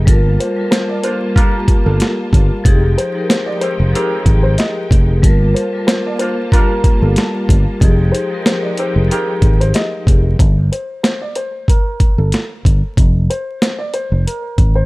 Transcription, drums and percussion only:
0.07 kick, closed hi-hat
0.40 closed hi-hat
0.72 snare, closed hi-hat
1.04 closed hi-hat
1.36 kick, closed hi-hat
1.68 kick, closed hi-hat
2.00 snare, closed hi-hat
2.33 kick, closed hi-hat
2.65 kick, closed hi-hat
2.98 closed hi-hat
3.30 snare, closed hi-hat
3.61 closed hi-hat
3.95 closed hi-hat
4.26 kick, closed hi-hat
4.58 snare, closed hi-hat
4.91 kick, closed hi-hat
5.23 kick, closed hi-hat
5.56 closed hi-hat
5.88 snare, closed hi-hat
6.19 closed hi-hat
6.52 kick, closed hi-hat
6.84 kick, closed hi-hat
7.16 snare, closed hi-hat
7.49 kick, closed hi-hat
7.81 kick, closed hi-hat
8.15 closed hi-hat
8.46 snare, closed hi-hat
8.77 closed hi-hat
9.11 closed hi-hat
9.42 kick, closed hi-hat
9.61 closed hi-hat
9.74 snare, closed hi-hat
10.07 kick, closed hi-hat
10.39 kick, closed hi-hat
10.73 closed hi-hat
11.04 snare, closed hi-hat
11.35 closed hi-hat
11.68 kick, closed hi-hat
12.00 kick, closed hi-hat
12.32 snare, closed hi-hat
12.65 kick, closed hi-hat
12.97 kick, closed hi-hat
13.31 closed hi-hat
13.62 snare, closed hi-hat
13.94 closed hi-hat
14.27 closed hi-hat
14.58 kick, closed hi-hat

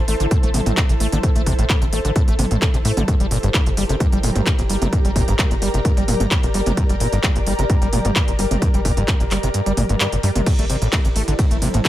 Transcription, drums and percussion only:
0.08 open hi-hat
0.20 closed hi-hat
0.31 kick, closed hi-hat
0.43 closed hi-hat
0.54 mid tom, open hi-hat
0.66 closed hi-hat, mid tom
0.77 kick, clap, closed hi-hat
0.89 closed hi-hat
1.00 open hi-hat
1.12 closed hi-hat, mid tom
1.23 kick, closed hi-hat
1.36 closed hi-hat
1.46 kick, open hi-hat
1.59 closed hi-hat
1.70 kick, clap, closed hi-hat
1.82 closed hi-hat
1.93 open hi-hat
2.05 closed hi-hat
2.16 kick, closed hi-hat
2.28 closed hi-hat
2.39 mid tom, open hi-hat
2.51 closed hi-hat, mid tom
2.62 kick, clap, closed hi-hat
2.74 closed hi-hat
2.85 open hi-hat
2.97 closed hi-hat, mid tom
3.08 kick, closed hi-hat
3.20 closed hi-hat
3.31 open hi-hat
3.43 closed hi-hat
3.54 kick, clap, closed hi-hat
3.66 closed hi-hat
3.77 open hi-hat
3.89 closed hi-hat
4.00 kick, closed hi-hat
4.12 closed hi-hat
4.23 mid tom, open hi-hat
4.36 closed hi-hat, mid tom
4.46 kick, clap, closed hi-hat
4.59 closed hi-hat
4.70 open hi-hat
4.82 closed hi-hat, mid tom
4.93 kick, closed hi-hat
5.05 closed hi-hat
5.16 kick, open hi-hat
5.28 closed hi-hat
5.39 kick, clap, closed hi-hat
5.51 closed hi-hat
5.62 open hi-hat
5.74 closed hi-hat
5.85 kick, closed hi-hat
5.97 closed hi-hat
6.08 mid tom, open hi-hat
6.20 closed hi-hat, mid tom
6.31 kick, clap, closed hi-hat
6.43 closed hi-hat
6.54 open hi-hat
6.66 closed hi-hat, mid tom
6.77 kick, closed hi-hat
6.89 closed hi-hat
7.00 open hi-hat
7.13 closed hi-hat
7.23 kick, clap, closed hi-hat
7.36 closed hi-hat
7.47 open hi-hat
7.59 closed hi-hat
7.70 kick, closed hi-hat
7.82 closed hi-hat
7.93 mid tom, open hi-hat
8.05 closed hi-hat, mid tom
8.16 kick, clap, closed hi-hat
8.28 closed hi-hat
8.39 open hi-hat
8.51 closed hi-hat, mid tom
8.62 kick, closed hi-hat
8.74 closed hi-hat
8.85 kick, open hi-hat
8.97 closed hi-hat
9.08 kick, clap, closed hi-hat
9.20 closed hi-hat
9.31 clap, open hi-hat
9.43 closed hi-hat
9.54 closed hi-hat
9.66 closed hi-hat
9.77 mid tom, open hi-hat
9.89 closed hi-hat, mid tom
10.00 clap, closed hi-hat
10.12 closed hi-hat
10.23 open hi-hat
10.35 closed hi-hat, mid tom
10.46 kick, closed hi-hat, ride, crash
10.59 closed hi-hat
10.70 open hi-hat
10.82 closed hi-hat
10.93 kick, clap, closed hi-hat, ride
11.05 closed hi-hat
11.16 open hi-hat
11.28 closed hi-hat
11.39 kick, closed hi-hat, ride
11.51 closed hi-hat
11.62 mid tom, open hi-hat
11.74 closed hi-hat, mid tom
11.85 kick, clap, closed hi-hat, ride

